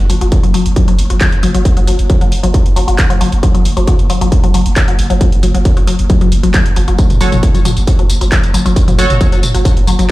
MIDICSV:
0, 0, Header, 1, 5, 480
1, 0, Start_track
1, 0, Tempo, 444444
1, 1785, Time_signature, 4, 2, 24, 8
1, 10922, End_track
2, 0, Start_track
2, 0, Title_t, "Analog polysynth"
2, 0, Program_c, 0, 90
2, 7784, Note_on_c, 0, 66, 77
2, 7784, Note_on_c, 0, 69, 71
2, 7784, Note_on_c, 0, 73, 83
2, 7862, Note_off_c, 0, 66, 0
2, 7862, Note_off_c, 0, 69, 0
2, 7862, Note_off_c, 0, 73, 0
2, 9704, Note_on_c, 0, 66, 96
2, 9704, Note_on_c, 0, 69, 89
2, 9705, Note_on_c, 0, 73, 106
2, 9782, Note_off_c, 0, 66, 0
2, 9782, Note_off_c, 0, 69, 0
2, 9782, Note_off_c, 0, 73, 0
2, 10922, End_track
3, 0, Start_track
3, 0, Title_t, "Synth arpeggio sound"
3, 0, Program_c, 1, 84
3, 104, Note_on_c, 1, 54, 101
3, 136, Note_off_c, 1, 54, 0
3, 229, Note_on_c, 1, 54, 100
3, 277, Note_off_c, 1, 54, 0
3, 469, Note_on_c, 1, 54, 98
3, 498, Note_off_c, 1, 54, 0
3, 584, Note_on_c, 1, 54, 101
3, 637, Note_off_c, 1, 54, 0
3, 824, Note_on_c, 1, 54, 97
3, 856, Note_off_c, 1, 54, 0
3, 950, Note_on_c, 1, 54, 100
3, 998, Note_off_c, 1, 54, 0
3, 1189, Note_on_c, 1, 54, 99
3, 1218, Note_off_c, 1, 54, 0
3, 1305, Note_on_c, 1, 54, 98
3, 1357, Note_off_c, 1, 54, 0
3, 1544, Note_on_c, 1, 54, 101
3, 1576, Note_off_c, 1, 54, 0
3, 1669, Note_on_c, 1, 54, 104
3, 1717, Note_off_c, 1, 54, 0
3, 1909, Note_on_c, 1, 54, 97
3, 1938, Note_off_c, 1, 54, 0
3, 2024, Note_on_c, 1, 54, 98
3, 2076, Note_off_c, 1, 54, 0
3, 2265, Note_on_c, 1, 54, 102
3, 2296, Note_off_c, 1, 54, 0
3, 2389, Note_on_c, 1, 54, 101
3, 2437, Note_off_c, 1, 54, 0
3, 2628, Note_on_c, 1, 54, 102
3, 2658, Note_off_c, 1, 54, 0
3, 2743, Note_on_c, 1, 54, 101
3, 2796, Note_off_c, 1, 54, 0
3, 2983, Note_on_c, 1, 54, 101
3, 3015, Note_off_c, 1, 54, 0
3, 3107, Note_on_c, 1, 54, 96
3, 3156, Note_off_c, 1, 54, 0
3, 3347, Note_on_c, 1, 54, 98
3, 3377, Note_off_c, 1, 54, 0
3, 3463, Note_on_c, 1, 54, 103
3, 3516, Note_off_c, 1, 54, 0
3, 3704, Note_on_c, 1, 54, 104
3, 3736, Note_off_c, 1, 54, 0
3, 3829, Note_on_c, 1, 54, 99
3, 3877, Note_off_c, 1, 54, 0
3, 4069, Note_on_c, 1, 54, 98
3, 4098, Note_off_c, 1, 54, 0
3, 4185, Note_on_c, 1, 54, 105
3, 4237, Note_off_c, 1, 54, 0
3, 4425, Note_on_c, 1, 54, 104
3, 4456, Note_off_c, 1, 54, 0
3, 4550, Note_on_c, 1, 54, 101
3, 4598, Note_off_c, 1, 54, 0
3, 4790, Note_on_c, 1, 54, 104
3, 4819, Note_off_c, 1, 54, 0
3, 4905, Note_on_c, 1, 54, 105
3, 4957, Note_off_c, 1, 54, 0
3, 5144, Note_on_c, 1, 54, 101
3, 5176, Note_off_c, 1, 54, 0
3, 5271, Note_on_c, 1, 54, 100
3, 5318, Note_off_c, 1, 54, 0
3, 5509, Note_on_c, 1, 54, 102
3, 5538, Note_off_c, 1, 54, 0
3, 5625, Note_on_c, 1, 54, 101
3, 5677, Note_off_c, 1, 54, 0
3, 5864, Note_on_c, 1, 54, 100
3, 5896, Note_off_c, 1, 54, 0
3, 5988, Note_on_c, 1, 54, 99
3, 6037, Note_off_c, 1, 54, 0
3, 6229, Note_on_c, 1, 54, 103
3, 6258, Note_off_c, 1, 54, 0
3, 6344, Note_on_c, 1, 54, 100
3, 6396, Note_off_c, 1, 54, 0
3, 6585, Note_on_c, 1, 54, 97
3, 6616, Note_off_c, 1, 54, 0
3, 6710, Note_on_c, 1, 54, 102
3, 6758, Note_off_c, 1, 54, 0
3, 6949, Note_on_c, 1, 54, 99
3, 6979, Note_off_c, 1, 54, 0
3, 7064, Note_on_c, 1, 54, 103
3, 7117, Note_off_c, 1, 54, 0
3, 7305, Note_on_c, 1, 54, 101
3, 7336, Note_off_c, 1, 54, 0
3, 7429, Note_on_c, 1, 54, 101
3, 7478, Note_off_c, 1, 54, 0
3, 7544, Note_on_c, 1, 54, 101
3, 7597, Note_off_c, 1, 54, 0
3, 7785, Note_on_c, 1, 54, 101
3, 7816, Note_off_c, 1, 54, 0
3, 7910, Note_on_c, 1, 54, 99
3, 7958, Note_off_c, 1, 54, 0
3, 8149, Note_on_c, 1, 54, 104
3, 8178, Note_off_c, 1, 54, 0
3, 8265, Note_on_c, 1, 54, 101
3, 8317, Note_off_c, 1, 54, 0
3, 8505, Note_on_c, 1, 54, 104
3, 8536, Note_off_c, 1, 54, 0
3, 8630, Note_on_c, 1, 54, 101
3, 8678, Note_off_c, 1, 54, 0
3, 8870, Note_on_c, 1, 54, 101
3, 8899, Note_off_c, 1, 54, 0
3, 8984, Note_on_c, 1, 54, 101
3, 9036, Note_off_c, 1, 54, 0
3, 9224, Note_on_c, 1, 54, 103
3, 9256, Note_off_c, 1, 54, 0
3, 9349, Note_on_c, 1, 54, 102
3, 9397, Note_off_c, 1, 54, 0
3, 9589, Note_on_c, 1, 54, 100
3, 9618, Note_off_c, 1, 54, 0
3, 9704, Note_on_c, 1, 54, 99
3, 9757, Note_off_c, 1, 54, 0
3, 9945, Note_on_c, 1, 54, 106
3, 9976, Note_off_c, 1, 54, 0
3, 10069, Note_on_c, 1, 54, 102
3, 10117, Note_off_c, 1, 54, 0
3, 10309, Note_on_c, 1, 54, 102
3, 10338, Note_off_c, 1, 54, 0
3, 10424, Note_on_c, 1, 54, 100
3, 10477, Note_off_c, 1, 54, 0
3, 10664, Note_on_c, 1, 54, 102
3, 10696, Note_off_c, 1, 54, 0
3, 10789, Note_on_c, 1, 54, 103
3, 10838, Note_off_c, 1, 54, 0
3, 10922, End_track
4, 0, Start_track
4, 0, Title_t, "808-style bass"
4, 0, Program_c, 2, 38
4, 104, Note_on_c, 2, 30, 101
4, 223, Note_off_c, 2, 30, 0
4, 230, Note_on_c, 2, 30, 83
4, 343, Note_off_c, 2, 30, 0
4, 470, Note_on_c, 2, 30, 78
4, 583, Note_off_c, 2, 30, 0
4, 708, Note_on_c, 2, 30, 82
4, 822, Note_off_c, 2, 30, 0
4, 949, Note_on_c, 2, 30, 79
4, 1057, Note_off_c, 2, 30, 0
4, 1063, Note_on_c, 2, 30, 94
4, 1183, Note_off_c, 2, 30, 0
4, 1190, Note_on_c, 2, 30, 80
4, 1303, Note_off_c, 2, 30, 0
4, 1544, Note_on_c, 2, 30, 102
4, 1663, Note_off_c, 2, 30, 0
4, 1669, Note_on_c, 2, 30, 84
4, 1783, Note_off_c, 2, 30, 0
4, 1910, Note_on_c, 2, 30, 75
4, 2018, Note_off_c, 2, 30, 0
4, 2025, Note_on_c, 2, 30, 99
4, 2142, Note_off_c, 2, 30, 0
4, 2149, Note_on_c, 2, 30, 85
4, 2262, Note_off_c, 2, 30, 0
4, 2389, Note_on_c, 2, 30, 76
4, 2502, Note_off_c, 2, 30, 0
4, 2629, Note_on_c, 2, 30, 82
4, 2742, Note_off_c, 2, 30, 0
4, 2868, Note_on_c, 2, 30, 77
4, 2977, Note_off_c, 2, 30, 0
4, 2984, Note_on_c, 2, 30, 98
4, 3103, Note_off_c, 2, 30, 0
4, 3109, Note_on_c, 2, 30, 81
4, 3222, Note_off_c, 2, 30, 0
4, 3464, Note_on_c, 2, 30, 101
4, 3582, Note_off_c, 2, 30, 0
4, 3589, Note_on_c, 2, 30, 81
4, 3702, Note_off_c, 2, 30, 0
4, 3829, Note_on_c, 2, 30, 78
4, 3936, Note_off_c, 2, 30, 0
4, 3943, Note_on_c, 2, 30, 101
4, 4061, Note_off_c, 2, 30, 0
4, 4067, Note_on_c, 2, 30, 81
4, 4182, Note_off_c, 2, 30, 0
4, 4309, Note_on_c, 2, 30, 78
4, 4422, Note_off_c, 2, 30, 0
4, 4549, Note_on_c, 2, 30, 83
4, 4662, Note_off_c, 2, 30, 0
4, 4789, Note_on_c, 2, 30, 80
4, 4900, Note_off_c, 2, 30, 0
4, 4906, Note_on_c, 2, 30, 97
4, 5023, Note_off_c, 2, 30, 0
4, 5030, Note_on_c, 2, 30, 81
4, 5143, Note_off_c, 2, 30, 0
4, 5385, Note_on_c, 2, 30, 100
4, 5504, Note_off_c, 2, 30, 0
4, 5510, Note_on_c, 2, 30, 81
4, 5623, Note_off_c, 2, 30, 0
4, 5750, Note_on_c, 2, 30, 76
4, 5860, Note_off_c, 2, 30, 0
4, 5866, Note_on_c, 2, 30, 101
4, 5984, Note_off_c, 2, 30, 0
4, 5991, Note_on_c, 2, 30, 83
4, 6103, Note_off_c, 2, 30, 0
4, 6231, Note_on_c, 2, 30, 80
4, 6344, Note_off_c, 2, 30, 0
4, 6471, Note_on_c, 2, 30, 85
4, 6583, Note_off_c, 2, 30, 0
4, 6710, Note_on_c, 2, 30, 79
4, 6820, Note_off_c, 2, 30, 0
4, 6827, Note_on_c, 2, 30, 99
4, 6945, Note_off_c, 2, 30, 0
4, 6952, Note_on_c, 2, 30, 79
4, 7064, Note_off_c, 2, 30, 0
4, 7307, Note_on_c, 2, 30, 102
4, 7426, Note_off_c, 2, 30, 0
4, 7432, Note_on_c, 2, 30, 81
4, 7544, Note_off_c, 2, 30, 0
4, 7670, Note_on_c, 2, 30, 75
4, 7780, Note_off_c, 2, 30, 0
4, 7786, Note_on_c, 2, 30, 103
4, 7906, Note_off_c, 2, 30, 0
4, 7912, Note_on_c, 2, 30, 83
4, 8024, Note_off_c, 2, 30, 0
4, 8150, Note_on_c, 2, 30, 76
4, 8263, Note_off_c, 2, 30, 0
4, 8389, Note_on_c, 2, 30, 81
4, 8503, Note_off_c, 2, 30, 0
4, 8630, Note_on_c, 2, 30, 77
4, 8738, Note_off_c, 2, 30, 0
4, 8744, Note_on_c, 2, 30, 97
4, 8863, Note_off_c, 2, 30, 0
4, 8869, Note_on_c, 2, 30, 83
4, 8982, Note_off_c, 2, 30, 0
4, 9224, Note_on_c, 2, 30, 98
4, 9342, Note_off_c, 2, 30, 0
4, 9349, Note_on_c, 2, 30, 83
4, 9462, Note_off_c, 2, 30, 0
4, 9590, Note_on_c, 2, 30, 76
4, 9698, Note_off_c, 2, 30, 0
4, 9705, Note_on_c, 2, 30, 100
4, 9823, Note_off_c, 2, 30, 0
4, 9830, Note_on_c, 2, 30, 84
4, 9943, Note_off_c, 2, 30, 0
4, 10069, Note_on_c, 2, 30, 78
4, 10182, Note_off_c, 2, 30, 0
4, 10308, Note_on_c, 2, 30, 81
4, 10422, Note_off_c, 2, 30, 0
4, 10549, Note_on_c, 2, 30, 78
4, 10658, Note_off_c, 2, 30, 0
4, 10664, Note_on_c, 2, 30, 98
4, 10781, Note_off_c, 2, 30, 0
4, 10787, Note_on_c, 2, 30, 80
4, 10901, Note_off_c, 2, 30, 0
4, 10922, End_track
5, 0, Start_track
5, 0, Title_t, "Drums"
5, 105, Note_on_c, 9, 46, 107
5, 213, Note_off_c, 9, 46, 0
5, 230, Note_on_c, 9, 42, 53
5, 338, Note_off_c, 9, 42, 0
5, 344, Note_on_c, 9, 42, 94
5, 345, Note_on_c, 9, 36, 120
5, 452, Note_off_c, 9, 42, 0
5, 453, Note_off_c, 9, 36, 0
5, 469, Note_on_c, 9, 42, 54
5, 577, Note_off_c, 9, 42, 0
5, 584, Note_on_c, 9, 46, 93
5, 692, Note_off_c, 9, 46, 0
5, 710, Note_on_c, 9, 42, 55
5, 818, Note_off_c, 9, 42, 0
5, 824, Note_on_c, 9, 36, 118
5, 824, Note_on_c, 9, 42, 96
5, 932, Note_off_c, 9, 36, 0
5, 932, Note_off_c, 9, 42, 0
5, 949, Note_on_c, 9, 42, 54
5, 1057, Note_off_c, 9, 42, 0
5, 1065, Note_on_c, 9, 46, 106
5, 1173, Note_off_c, 9, 46, 0
5, 1189, Note_on_c, 9, 42, 54
5, 1297, Note_off_c, 9, 42, 0
5, 1304, Note_on_c, 9, 39, 121
5, 1304, Note_on_c, 9, 42, 94
5, 1305, Note_on_c, 9, 36, 122
5, 1412, Note_off_c, 9, 39, 0
5, 1412, Note_off_c, 9, 42, 0
5, 1413, Note_off_c, 9, 36, 0
5, 1429, Note_on_c, 9, 42, 52
5, 1537, Note_off_c, 9, 42, 0
5, 1544, Note_on_c, 9, 46, 90
5, 1652, Note_off_c, 9, 46, 0
5, 1669, Note_on_c, 9, 42, 54
5, 1777, Note_off_c, 9, 42, 0
5, 1784, Note_on_c, 9, 42, 96
5, 1785, Note_on_c, 9, 36, 120
5, 1892, Note_off_c, 9, 42, 0
5, 1893, Note_off_c, 9, 36, 0
5, 1909, Note_on_c, 9, 42, 56
5, 2017, Note_off_c, 9, 42, 0
5, 2025, Note_on_c, 9, 46, 110
5, 2133, Note_off_c, 9, 46, 0
5, 2149, Note_on_c, 9, 42, 52
5, 2257, Note_off_c, 9, 42, 0
5, 2264, Note_on_c, 9, 42, 96
5, 2265, Note_on_c, 9, 36, 121
5, 2372, Note_off_c, 9, 42, 0
5, 2373, Note_off_c, 9, 36, 0
5, 2389, Note_on_c, 9, 42, 55
5, 2497, Note_off_c, 9, 42, 0
5, 2505, Note_on_c, 9, 46, 95
5, 2613, Note_off_c, 9, 46, 0
5, 2630, Note_on_c, 9, 42, 55
5, 2738, Note_off_c, 9, 42, 0
5, 2745, Note_on_c, 9, 36, 126
5, 2745, Note_on_c, 9, 42, 93
5, 2853, Note_off_c, 9, 36, 0
5, 2853, Note_off_c, 9, 42, 0
5, 2870, Note_on_c, 9, 42, 55
5, 2978, Note_off_c, 9, 42, 0
5, 2986, Note_on_c, 9, 46, 107
5, 3094, Note_off_c, 9, 46, 0
5, 3110, Note_on_c, 9, 42, 53
5, 3218, Note_off_c, 9, 42, 0
5, 3225, Note_on_c, 9, 36, 127
5, 3225, Note_on_c, 9, 39, 120
5, 3225, Note_on_c, 9, 42, 96
5, 3333, Note_off_c, 9, 36, 0
5, 3333, Note_off_c, 9, 39, 0
5, 3333, Note_off_c, 9, 42, 0
5, 3351, Note_on_c, 9, 42, 55
5, 3459, Note_off_c, 9, 42, 0
5, 3465, Note_on_c, 9, 46, 95
5, 3573, Note_off_c, 9, 46, 0
5, 3590, Note_on_c, 9, 42, 52
5, 3698, Note_off_c, 9, 42, 0
5, 3705, Note_on_c, 9, 36, 124
5, 3705, Note_on_c, 9, 42, 91
5, 3813, Note_off_c, 9, 36, 0
5, 3813, Note_off_c, 9, 42, 0
5, 3830, Note_on_c, 9, 42, 52
5, 3938, Note_off_c, 9, 42, 0
5, 3945, Note_on_c, 9, 46, 109
5, 4053, Note_off_c, 9, 46, 0
5, 4070, Note_on_c, 9, 42, 52
5, 4178, Note_off_c, 9, 42, 0
5, 4185, Note_on_c, 9, 36, 123
5, 4185, Note_on_c, 9, 42, 91
5, 4293, Note_off_c, 9, 36, 0
5, 4293, Note_off_c, 9, 42, 0
5, 4310, Note_on_c, 9, 42, 53
5, 4418, Note_off_c, 9, 42, 0
5, 4425, Note_on_c, 9, 46, 97
5, 4533, Note_off_c, 9, 46, 0
5, 4551, Note_on_c, 9, 42, 54
5, 4659, Note_off_c, 9, 42, 0
5, 4665, Note_on_c, 9, 36, 122
5, 4666, Note_on_c, 9, 42, 92
5, 4773, Note_off_c, 9, 36, 0
5, 4774, Note_off_c, 9, 42, 0
5, 4791, Note_on_c, 9, 42, 53
5, 4899, Note_off_c, 9, 42, 0
5, 4905, Note_on_c, 9, 46, 114
5, 5013, Note_off_c, 9, 46, 0
5, 5030, Note_on_c, 9, 42, 52
5, 5138, Note_off_c, 9, 42, 0
5, 5145, Note_on_c, 9, 36, 127
5, 5146, Note_on_c, 9, 39, 117
5, 5146, Note_on_c, 9, 42, 97
5, 5253, Note_off_c, 9, 36, 0
5, 5254, Note_off_c, 9, 39, 0
5, 5254, Note_off_c, 9, 42, 0
5, 5270, Note_on_c, 9, 42, 53
5, 5378, Note_off_c, 9, 42, 0
5, 5386, Note_on_c, 9, 46, 95
5, 5494, Note_off_c, 9, 46, 0
5, 5511, Note_on_c, 9, 42, 52
5, 5619, Note_off_c, 9, 42, 0
5, 5625, Note_on_c, 9, 36, 118
5, 5625, Note_on_c, 9, 42, 92
5, 5733, Note_off_c, 9, 36, 0
5, 5733, Note_off_c, 9, 42, 0
5, 5750, Note_on_c, 9, 42, 52
5, 5858, Note_off_c, 9, 42, 0
5, 5865, Note_on_c, 9, 46, 110
5, 5973, Note_off_c, 9, 46, 0
5, 5990, Note_on_c, 9, 42, 51
5, 6098, Note_off_c, 9, 42, 0
5, 6105, Note_on_c, 9, 36, 122
5, 6105, Note_on_c, 9, 42, 90
5, 6213, Note_off_c, 9, 36, 0
5, 6213, Note_off_c, 9, 42, 0
5, 6230, Note_on_c, 9, 42, 51
5, 6338, Note_off_c, 9, 42, 0
5, 6344, Note_on_c, 9, 46, 97
5, 6452, Note_off_c, 9, 46, 0
5, 6469, Note_on_c, 9, 42, 50
5, 6577, Note_off_c, 9, 42, 0
5, 6585, Note_on_c, 9, 36, 122
5, 6585, Note_on_c, 9, 42, 89
5, 6693, Note_off_c, 9, 36, 0
5, 6693, Note_off_c, 9, 42, 0
5, 6708, Note_on_c, 9, 42, 51
5, 6816, Note_off_c, 9, 42, 0
5, 6825, Note_on_c, 9, 46, 113
5, 6933, Note_off_c, 9, 46, 0
5, 6949, Note_on_c, 9, 42, 50
5, 7057, Note_off_c, 9, 42, 0
5, 7064, Note_on_c, 9, 39, 113
5, 7064, Note_on_c, 9, 42, 89
5, 7065, Note_on_c, 9, 36, 126
5, 7172, Note_off_c, 9, 39, 0
5, 7172, Note_off_c, 9, 42, 0
5, 7173, Note_off_c, 9, 36, 0
5, 7189, Note_on_c, 9, 42, 51
5, 7297, Note_off_c, 9, 42, 0
5, 7304, Note_on_c, 9, 46, 95
5, 7412, Note_off_c, 9, 46, 0
5, 7429, Note_on_c, 9, 42, 49
5, 7537, Note_off_c, 9, 42, 0
5, 7544, Note_on_c, 9, 42, 86
5, 7544, Note_on_c, 9, 54, 43
5, 7545, Note_on_c, 9, 36, 120
5, 7652, Note_off_c, 9, 42, 0
5, 7652, Note_off_c, 9, 54, 0
5, 7653, Note_off_c, 9, 36, 0
5, 7668, Note_on_c, 9, 42, 50
5, 7668, Note_on_c, 9, 45, 93
5, 7668, Note_on_c, 9, 54, 30
5, 7776, Note_off_c, 9, 42, 0
5, 7776, Note_off_c, 9, 45, 0
5, 7776, Note_off_c, 9, 54, 0
5, 7783, Note_on_c, 9, 46, 106
5, 7783, Note_on_c, 9, 54, 78
5, 7891, Note_off_c, 9, 46, 0
5, 7891, Note_off_c, 9, 54, 0
5, 7909, Note_on_c, 9, 42, 49
5, 7909, Note_on_c, 9, 45, 92
5, 7909, Note_on_c, 9, 54, 33
5, 8017, Note_off_c, 9, 42, 0
5, 8017, Note_off_c, 9, 45, 0
5, 8017, Note_off_c, 9, 54, 0
5, 8024, Note_on_c, 9, 42, 85
5, 8024, Note_on_c, 9, 54, 44
5, 8025, Note_on_c, 9, 36, 119
5, 8132, Note_off_c, 9, 42, 0
5, 8132, Note_off_c, 9, 54, 0
5, 8133, Note_off_c, 9, 36, 0
5, 8149, Note_on_c, 9, 42, 50
5, 8149, Note_on_c, 9, 54, 31
5, 8257, Note_off_c, 9, 42, 0
5, 8257, Note_off_c, 9, 54, 0
5, 8264, Note_on_c, 9, 45, 96
5, 8264, Note_on_c, 9, 46, 94
5, 8264, Note_on_c, 9, 54, 79
5, 8372, Note_off_c, 9, 45, 0
5, 8372, Note_off_c, 9, 46, 0
5, 8372, Note_off_c, 9, 54, 0
5, 8389, Note_on_c, 9, 42, 50
5, 8389, Note_on_c, 9, 54, 33
5, 8497, Note_off_c, 9, 42, 0
5, 8497, Note_off_c, 9, 54, 0
5, 8504, Note_on_c, 9, 36, 116
5, 8504, Note_on_c, 9, 42, 89
5, 8504, Note_on_c, 9, 54, 44
5, 8612, Note_off_c, 9, 36, 0
5, 8612, Note_off_c, 9, 42, 0
5, 8612, Note_off_c, 9, 54, 0
5, 8629, Note_on_c, 9, 42, 50
5, 8737, Note_off_c, 9, 42, 0
5, 8744, Note_on_c, 9, 46, 110
5, 8744, Note_on_c, 9, 54, 79
5, 8852, Note_off_c, 9, 46, 0
5, 8852, Note_off_c, 9, 54, 0
5, 8869, Note_on_c, 9, 42, 49
5, 8869, Note_on_c, 9, 54, 33
5, 8977, Note_off_c, 9, 42, 0
5, 8977, Note_off_c, 9, 54, 0
5, 8984, Note_on_c, 9, 36, 122
5, 8985, Note_on_c, 9, 39, 112
5, 8985, Note_on_c, 9, 42, 89
5, 8985, Note_on_c, 9, 54, 44
5, 9092, Note_off_c, 9, 36, 0
5, 9093, Note_off_c, 9, 39, 0
5, 9093, Note_off_c, 9, 42, 0
5, 9093, Note_off_c, 9, 54, 0
5, 9110, Note_on_c, 9, 42, 51
5, 9110, Note_on_c, 9, 54, 30
5, 9218, Note_off_c, 9, 42, 0
5, 9218, Note_off_c, 9, 54, 0
5, 9225, Note_on_c, 9, 46, 94
5, 9225, Note_on_c, 9, 54, 76
5, 9333, Note_off_c, 9, 46, 0
5, 9333, Note_off_c, 9, 54, 0
5, 9350, Note_on_c, 9, 42, 50
5, 9350, Note_on_c, 9, 54, 33
5, 9458, Note_off_c, 9, 42, 0
5, 9458, Note_off_c, 9, 54, 0
5, 9464, Note_on_c, 9, 36, 113
5, 9465, Note_on_c, 9, 42, 91
5, 9465, Note_on_c, 9, 54, 45
5, 9572, Note_off_c, 9, 36, 0
5, 9573, Note_off_c, 9, 42, 0
5, 9573, Note_off_c, 9, 54, 0
5, 9590, Note_on_c, 9, 42, 50
5, 9590, Note_on_c, 9, 45, 91
5, 9590, Note_on_c, 9, 54, 31
5, 9698, Note_off_c, 9, 42, 0
5, 9698, Note_off_c, 9, 45, 0
5, 9698, Note_off_c, 9, 54, 0
5, 9705, Note_on_c, 9, 46, 107
5, 9705, Note_on_c, 9, 54, 79
5, 9813, Note_off_c, 9, 46, 0
5, 9813, Note_off_c, 9, 54, 0
5, 9829, Note_on_c, 9, 42, 47
5, 9829, Note_on_c, 9, 45, 93
5, 9829, Note_on_c, 9, 54, 34
5, 9937, Note_off_c, 9, 42, 0
5, 9937, Note_off_c, 9, 45, 0
5, 9937, Note_off_c, 9, 54, 0
5, 9944, Note_on_c, 9, 36, 112
5, 9945, Note_on_c, 9, 42, 86
5, 9945, Note_on_c, 9, 54, 43
5, 10052, Note_off_c, 9, 36, 0
5, 10053, Note_off_c, 9, 42, 0
5, 10053, Note_off_c, 9, 54, 0
5, 10069, Note_on_c, 9, 42, 51
5, 10069, Note_on_c, 9, 54, 32
5, 10177, Note_off_c, 9, 42, 0
5, 10177, Note_off_c, 9, 54, 0
5, 10184, Note_on_c, 9, 45, 94
5, 10184, Note_on_c, 9, 46, 89
5, 10184, Note_on_c, 9, 54, 77
5, 10292, Note_off_c, 9, 45, 0
5, 10292, Note_off_c, 9, 46, 0
5, 10292, Note_off_c, 9, 54, 0
5, 10309, Note_on_c, 9, 42, 49
5, 10309, Note_on_c, 9, 54, 33
5, 10417, Note_off_c, 9, 42, 0
5, 10417, Note_off_c, 9, 54, 0
5, 10424, Note_on_c, 9, 36, 115
5, 10424, Note_on_c, 9, 42, 85
5, 10424, Note_on_c, 9, 45, 84
5, 10424, Note_on_c, 9, 54, 44
5, 10532, Note_off_c, 9, 36, 0
5, 10532, Note_off_c, 9, 42, 0
5, 10532, Note_off_c, 9, 45, 0
5, 10532, Note_off_c, 9, 54, 0
5, 10550, Note_on_c, 9, 42, 50
5, 10658, Note_off_c, 9, 42, 0
5, 10665, Note_on_c, 9, 46, 100
5, 10665, Note_on_c, 9, 54, 76
5, 10773, Note_off_c, 9, 46, 0
5, 10773, Note_off_c, 9, 54, 0
5, 10790, Note_on_c, 9, 42, 50
5, 10790, Note_on_c, 9, 54, 31
5, 10898, Note_off_c, 9, 42, 0
5, 10898, Note_off_c, 9, 54, 0
5, 10922, End_track
0, 0, End_of_file